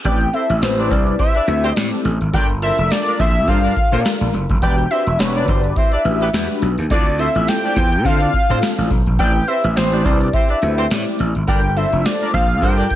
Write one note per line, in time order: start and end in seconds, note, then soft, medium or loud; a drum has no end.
0.04 0.28 A1 loud
0.04 0.24 C4 medium
0.04 0.18 D4 loud
0.04 0.24 E4 medium
0.04 0.18 G4 loud
0.04 0.24 G4 medium
0.04 0.18 B4 medium
0.04 0.24 B4 medium
0.04 0.18 D5 loud
0.04 0.35 G5 loud
0.04 kick loud
0.04 closed hi-hat loud
0.21 closed hi-hat soft
0.33 0.52 C4 medium
0.33 0.46 C4 medium
0.33 0.52 E4 medium
0.33 0.46 E4 medium
0.33 0.46 G4 medium
0.33 0.52 G4 medium
0.33 0.53 A4 medium
0.33 0.46 C5 medium
0.33 0.64 E5 loud
0.33 closed hi-hat medium
0.49 0.60 A1 medium
0.49 closed hi-hat medium
0.61 0.91 A1 medium
0.61 0.69 B3 medium
0.61 1.15 E4 medium
0.61 1.15 G4 medium
0.61 1.15 B4 medium
0.61 0.92 C5 loud
0.61 snare loud
0.61 clap medium
0.61 closed hi-hat medium
0.68 1.18 C4 medium
0.78 0.88 D4 medium
0.78 0.88 G4 medium
0.78 0.88 B4 medium
0.78 0.88 D5 loud
0.78 closed hi-hat medium
0.90 1.14 C2 medium
0.90 1.03 C4 medium
0.90 1.03 E4 medium
0.90 1.03 G4 medium
0.90 1.03 C5 medium
0.90 1.19 D5 loud
0.90 kick medium
0.90 closed hi-hat medium
1.07 closed hi-hat medium
1.19 1.32 C4 medium
1.19 1.32 E4 loud
1.19 1.32 G4 medium
1.19 1.32 C5 medium
1.19 1.78 E5 loud
1.19 kick loud
1.19 closed hi-hat medium
1.35 1.45 D4 medium
1.35 1.45 G4 medium
1.35 1.45 B4 medium
1.35 1.45 D5 medium
1.35 closed hi-hat medium
1.47 1.71 D2 loud
1.47 1.67 C4 medium
1.47 1.67 E4 medium
1.47 1.67 G4 medium
1.47 1.67 B4 medium
1.47 closed hi-hat medium
1.63 1.71 C4 loud
1.63 1.71 E4 medium
1.63 1.71 G4 loud
1.63 1.71 C5 loud
1.63 closed hi-hat soft
1.76 1.89 A2 loud
1.76 2.12 C4 medium
1.76 2.12 E4 medium
1.76 2.12 G4 medium
1.76 2.12 A4 medium
1.76 2.01 D5 loud
1.76 snare loud
1.76 clap loud
1.76 closed hi-hat medium
1.92 closed hi-hat soft
2.05 2.18 A1 medium
2.05 closed hi-hat medium
2.21 2.31 G#1 medium
2.21 closed hi-hat soft
2.33 2.70 G1 loud
2.33 2.52 D4 medium
2.33 2.46 D4 loud
2.33 2.52 F4 medium
2.33 2.52 A4 medium
2.33 2.46 A#4 medium
2.33 2.52 A#4 medium
2.33 2.46 D5 loud
2.33 2.47 G5 loud
2.33 kick loud
2.33 closed hi-hat loud
2.50 closed hi-hat soft
2.61 2.75 C4 medium
2.61 3.15 D4 medium
2.61 3.15 F4 medium
2.61 2.75 F4 medium
2.61 2.75 A4 medium
2.61 3.15 A4 medium
2.61 3.15 A#4 medium
2.61 2.75 C5 medium
2.61 2.92 E5 loud
2.61 closed hi-hat medium
2.78 2.88 F1 medium
2.78 closed hi-hat medium
2.91 3.19 D5 loud
2.91 snare loud
2.91 clap medium
2.91 closed hi-hat medium
3.06 3.17 D4 medium
3.06 3.17 A#4 medium
3.06 3.17 D5 medium
3.06 closed hi-hat medium
3.19 3.48 A#1 loud
3.19 3.32 C4 medium
3.19 3.32 F4 medium
3.19 3.32 A4 medium
3.19 3.32 C5 medium
3.19 3.50 E5 loud
3.19 kick loud
3.19 closed hi-hat medium
3.35 closed hi-hat medium
3.48 3.71 G2 loud
3.48 3.61 C4 medium
3.48 3.74 D4 medium
3.48 3.60 F4 medium
3.48 3.74 F4 medium
3.48 3.61 A4 medium
3.48 3.75 A4 medium
3.48 3.75 A#4 medium
3.48 3.61 C5 loud
3.48 4.34 F5 medium
3.48 kick loud
3.48 closed hi-hat medium
3.63 3.74 D4 medium
3.63 3.74 A#4 medium
3.63 3.74 D5 medium
3.63 closed hi-hat medium
3.76 kick medium
3.76 closed hi-hat medium
3.92 4.02 A#2 medium
3.92 4.02 C4 loud
3.92 4.34 D4 medium
3.92 4.02 F4 medium
3.92 4.35 F4 medium
3.92 4.02 A4 loud
3.92 4.35 A4 medium
3.92 4.35 A#4 medium
3.92 4.02 C5 loud
3.92 closed hi-hat soft
4.05 snare loud
4.05 clap loud
4.05 closed hi-hat medium
4.20 4.31 A#1 medium
4.20 closed hi-hat soft
4.33 4.47 F#1 loud
4.33 closed hi-hat medium
4.49 4.60 F1 medium
4.49 kick medium
4.49 closed hi-hat soft
4.62 4.85 E1 loud
4.62 4.81 D4 medium
4.62 4.75 D4 loud
4.62 4.81 F#4 medium
4.62 4.75 G4 loud
4.62 4.81 G4 medium
4.62 4.75 B4 loud
4.62 4.81 B4 medium
4.62 4.75 D5 loud
4.62 4.89 G5 loud
4.62 kick loud
4.62 closed hi-hat loud
4.78 closed hi-hat soft
4.90 5.04 C4 medium
4.90 5.09 D4 medium
4.90 5.04 E4 medium
4.90 5.10 F#4 medium
4.90 5.04 G4 medium
4.90 5.10 G4 medium
4.90 5.10 B4 medium
4.90 5.04 C5 medium
4.90 5.21 E5 loud
4.90 closed hi-hat medium
5.07 5.17 E1 medium
5.07 closed hi-hat medium
5.19 5.42 E1 loud
5.19 5.72 D4 medium
5.19 5.72 F#4 medium
5.19 5.73 G4 medium
5.19 5.73 B4 loud
5.19 5.49 C#5 loud
5.19 snare loud
5.19 clap medium
5.19 closed hi-hat medium
5.35 5.46 D4 loud
5.35 5.46 G4 medium
5.35 5.46 B4 loud
5.35 5.46 D5 loud
5.35 closed hi-hat medium
5.48 5.71 G1 loud
5.48 5.61 C4 medium
5.48 5.61 E4 medium
5.48 5.61 G4 medium
5.48 5.61 C5 medium
5.48 5.78 D5 medium
5.48 kick medium
5.48 closed hi-hat medium
5.64 closed hi-hat medium
5.76 5.89 C4 loud
5.76 5.89 E4 medium
5.76 5.89 G4 loud
5.76 5.89 C5 loud
5.76 6.62 E5 loud
5.76 kick loud
5.76 closed hi-hat medium
5.92 6.03 D4 medium
5.92 6.02 G4 medium
5.92 6.02 B4 medium
5.92 6.03 D5 medium
5.92 closed hi-hat medium
6.04 6.28 A1 loud
6.04 6.24 D4 medium
6.04 6.24 F#4 medium
6.04 6.24 G4 medium
6.04 6.24 B4 medium
6.04 closed hi-hat medium
6.21 6.28 B3 medium
6.21 6.28 G4 loud
6.21 6.29 B4 loud
6.21 closed hi-hat soft
6.33 6.46 E2 loud
6.33 6.69 D4 medium
6.33 6.69 F#4 medium
6.33 6.70 G4 medium
6.33 6.70 B4 medium
6.33 snare loud
6.33 clap loud
6.33 closed hi-hat medium
6.49 closed hi-hat soft
6.62 6.75 B1 medium
6.62 closed hi-hat medium
6.78 6.88 D#2 medium
6.78 closed hi-hat soft
6.90 7.27 D2 loud
6.90 7.09 C4 medium
6.90 7.04 D4 loud
6.90 7.09 E4 medium
6.90 7.09 F4 medium
6.90 7.04 F4 loud
6.90 7.10 A4 medium
6.90 7.04 A4 loud
6.90 7.21 D5 medium
6.90 7.04 D5 loud
6.90 kick loud
6.90 closed hi-hat loud
7.07 closed hi-hat soft
7.19 7.72 C4 medium
7.19 7.32 C4 medium
7.19 7.72 E4 medium
7.19 7.72 F4 medium
7.19 7.32 F4 medium
7.19 7.32 A4 medium
7.19 7.73 A4 medium
7.19 7.32 C5 loud
7.19 7.49 E5 loud
7.19 closed hi-hat medium
7.35 7.45 A1 medium
7.35 closed hi-hat medium
7.47 8.07 G5 loud
7.47 snare loud
7.47 clap medium
7.47 closed hi-hat medium
7.63 7.74 D4 medium
7.63 7.74 F4 medium
7.63 7.74 A4 medium
7.63 7.74 D5 loud
7.63 closed hi-hat medium
7.76 8.05 E2 loud
7.76 7.89 C4 medium
7.76 7.89 F4 medium
7.76 7.89 A4 medium
7.76 7.89 C5 medium
7.76 kick medium
7.76 closed hi-hat medium
7.92 closed hi-hat medium
8.04 8.28 D3 loud
8.04 8.31 C4 medium
8.04 8.18 C4 loud
8.04 8.31 E4 medium
8.04 8.32 F4 medium
8.04 8.18 F4 medium
8.04 8.18 A4 medium
8.04 8.32 A4 medium
8.04 8.18 C5 loud
8.04 8.91 F5 loud
8.04 kick medium
8.04 closed hi-hat medium
8.20 8.31 D4 medium
8.20 8.31 F4 medium
8.20 8.31 A4 medium
8.20 8.31 D5 medium
8.20 closed hi-hat medium
8.33 kick medium
8.33 closed hi-hat medium
8.49 8.60 A2 loud
8.49 8.92 C4 medium
8.49 8.57 C4 loud
8.49 8.92 D4 medium
8.49 8.92 F4 medium
8.49 8.57 F4 medium
8.49 8.57 A4 loud
8.49 8.92 A4 medium
8.49 8.57 C5 loud
8.49 closed hi-hat soft
8.62 snare loud
8.62 clap loud
8.62 closed hi-hat medium
8.78 8.88 A1 medium
8.78 closed hi-hat soft
8.90 9.04 B1 medium
8.90 kick medium
8.90 open hi-hat medium
9.06 9.17 A#1 loud
9.06 kick medium
9.06 closed hi-hat soft
9.19 9.42 A1 loud
9.19 9.38 C4 medium
9.19 9.32 D4 medium
9.19 9.38 E4 medium
9.19 9.38 G4 medium
9.19 9.32 G4 medium
9.19 9.32 B4 medium
9.19 9.38 B4 medium
9.19 9.32 D5 loud
9.19 9.49 G5 loud
9.19 kick loud
9.19 closed hi-hat loud
9.35 closed hi-hat soft
9.47 9.66 C4 medium
9.47 9.61 C4 medium
9.47 9.66 E4 medium
9.47 9.61 E4 medium
9.47 9.61 G4 medium
9.47 9.67 G4 medium
9.47 9.67 B4 medium
9.47 9.61 C5 medium
9.47 9.76 E5 loud
9.47 closed hi-hat medium
9.64 9.74 A1 loud
9.64 closed hi-hat medium
9.76 10.05 A1 loud
9.76 10.29 C4 medium
9.76 10.29 E4 medium
9.76 10.30 G4 medium
9.76 10.30 B4 loud
9.76 10.06 C5 loud
9.76 snare loud
9.76 clap medium
9.76 closed hi-hat medium
9.92 10.02 D4 loud
9.92 10.02 G4 medium
9.92 10.02 B4 medium
9.92 10.02 D5 loud
9.92 closed hi-hat medium
10.05 10.28 C2 loud
10.05 10.18 C4 medium
10.05 10.18 E4 medium
10.05 10.17 G4 medium
10.05 10.18 C5 medium
10.05 10.35 D5 loud
10.05 kick loud
10.05 closed hi-hat medium
10.21 closed hi-hat medium
10.33 10.46 C4 medium
10.33 10.46 E4 medium
10.33 10.46 G4 medium
10.33 10.46 C5 loud
10.33 11.19 E5 medium
10.33 kick loud
10.33 closed hi-hat medium
10.49 10.59 D4 medium
10.49 10.59 G4 medium
10.49 10.59 B4 medium
10.49 10.59 D5 medium
10.49 closed hi-hat medium
10.62 10.85 D2 loud
10.62 10.81 C4 medium
10.62 10.81 E4 medium
10.62 10.81 G4 medium
10.62 10.81 B4 medium
10.62 closed hi-hat medium
10.78 10.85 C4 loud
10.78 10.85 E4 loud
10.78 10.85 G4 loud
10.78 10.85 C5 loud
10.78 closed hi-hat medium
10.90 11.04 A2 loud
10.90 11.26 C4 medium
10.90 11.27 E4 medium
10.90 11.27 G4 medium
10.90 11.27 D5 loud
10.90 snare loud
10.90 clap loud
10.90 closed hi-hat medium
11.06 closed hi-hat medium
11.19 11.33 A1 medium
11.19 closed hi-hat medium
11.35 11.46 G#1 medium
11.35 closed hi-hat soft
11.47 11.84 G1 loud
11.47 11.60 D4 loud
11.47 11.67 D4 medium
11.47 11.67 F4 medium
11.47 11.67 A4 medium
11.47 11.60 A#4 loud
11.47 11.67 A#4 medium
11.47 11.60 D5 loud
11.47 11.78 G5 loud
11.47 kick loud
11.47 closed hi-hat loud
11.64 closed hi-hat soft
11.76 11.89 C4 medium
11.76 12.30 D4 medium
11.76 11.89 F4 medium
11.76 12.30 F4 medium
11.76 11.89 A4 medium
11.76 12.30 A4 medium
11.76 11.89 C5 medium
11.76 12.30 C5 medium
11.76 12.07 E5 loud
11.76 closed hi-hat medium
11.92 12.03 F1 medium
11.92 closed hi-hat medium
12.05 12.33 D5 loud
12.05 snare loud
12.05 clap medium
12.05 closed hi-hat medium
12.21 12.31 D4 medium
12.21 12.31 A#4 loud
12.21 12.31 D5 loud
12.21 closed hi-hat medium
12.33 12.62 A#1 loud
12.33 12.46 C4 medium
12.33 12.46 F4 medium
12.33 12.46 A4 medium
12.33 12.46 C5 medium
12.33 12.60 F5 loud
12.33 kick medium
12.33 closed hi-hat medium
12.50 closed hi-hat medium
12.62 12.85 G2 loud
12.62 12.75 C4 loud
12.62 12.89 D4 medium
12.62 12.75 F4 loud
12.62 12.89 F4 medium
12.62 12.75 A4 medium
12.62 12.89 A4 medium
12.62 12.89 A#4 medium
12.62 12.75 C5 loud
12.62 12.96 G5 loud
12.62 kick loud
12.62 closed hi-hat medium
12.77 12.88 D4 medium
12.77 12.88 A#4 medium
12.77 12.88 D5 loud
12.77 closed hi-hat medium
12.90 kick medium
12.90 closed hi-hat medium